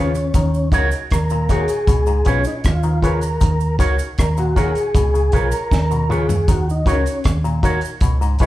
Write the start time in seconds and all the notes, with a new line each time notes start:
Already playing: D#2 C#3 C#4 F4 B4 C#5
0.15 muted clean electric guitar stroke, closed hi-hat, cabasa
0.34 D#2 D#3, kick, closed hi-hat, cabasa
0.54 cabasa
0.72 C#2 C#3 D#4 F#4 A#4 C#5, kick, closed hi-hat, cabasa
0.91 closed hi-hat, cabasa
1.11 D#2 A#4, kick, cross-stick, closed hi-hat, cabasa
1.30 A#2, cabasa
1.49 A#2 D#4 F#4 G#4 A#4 C#5, kick, closed hi-hat, cabasa
1.68 closed hi-hat, cabasa
1.87 C#2 B2, kick, closed hi-hat, cabasa
2.07 G#2, cabasa
2.25 B1 B2 C#4 F4 G#4 B4 C#5, kick, closed hi-hat, cabasa
2.44 D#4, closed hi-hat, cabasa
2.64 D#2 F4, kick, cross-stick, closed hi-hat, cabasa
2.83 D#3 B4 C#5, cabasa
3.02 C#3 F4 G#4 A#4 B4 C#5, kick, closed hi-hat, cabasa
3.21 closed hi-hat, cabasa
3.41 D#2 D#3, kick, closed hi-hat, cabasa
3.60 cabasa
3.79 C#2 C#3 D#4 F#4 A#4 C#5, kick, closed hi-hat, cabasa
3.99 closed hi-hat, cabasa
4.18 D#2 A#4, kick, cross-stick, closed hi-hat, cabasa
4.37 A#2 F#4, cabasa
4.55 A#2 D#4 F#4 G#4 A#4 C#5, kick, closed hi-hat, cabasa
4.75 closed hi-hat, cabasa
4.95 C#2 B2, kick, closed hi-hat, cabasa
5.14 C#3, cabasa
5.32 B1 C#3 F4 G#4 A#4 B4 C#5, kick, closed hi-hat, cabasa
5.52 B4 C#5, closed hi-hat, cabasa
5.71 D#2, kick, snare, cabasa
5.91 B2, cabasa
6.09 C#3 F4 G#4 B4 C#5, mid tom, cabasa
6.29 muted clean electric guitar stroke, floor tom, cabasa
6.48 D#2 D#3 F#4, kick, closed hi-hat, cabasa
6.70 D#4, cabasa
6.86 C#2 C#3 D#4 F#4 A#4 C#5, kick, closed hi-hat, cabasa
6.90 C#4
7.06 closed hi-hat, cabasa
7.24 D#2, kick, cross-stick, closed hi-hat, cabasa
7.44 A#2, cabasa
7.63 A#2 D#4 F#4 A#4 C#5, kick, closed hi-hat, cabasa
7.81 closed hi-hat, cabasa
8.01 C#2 B2, kick, closed hi-hat, cabasa
8.21 G#2, cabasa
8.39 B1 B2 D#4 F4 G#4 B4 C#5, kick, closed hi-hat, cabasa